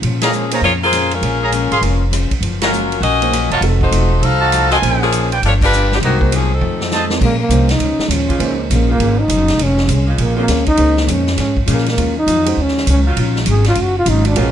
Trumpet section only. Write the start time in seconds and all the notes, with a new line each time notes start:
0.22 G#4 C#5 F5 A#5
0.52 G#4 C#5 F5 A#5
1.42 G#4 C#5 F5 A#5
1.72 G#4 C#5 F5 C6
2.61 F#4 C#5 F5 A#5
3.51 F#4 D#5 F5 A5
4.41 F#4 D#5 F5 A5
4.71 F4 A#4 G#5
5.31 F4 B4 D5 G5
6.02 F#4 C5 D#5 A#5
6.92 F4 C5 D#5 A5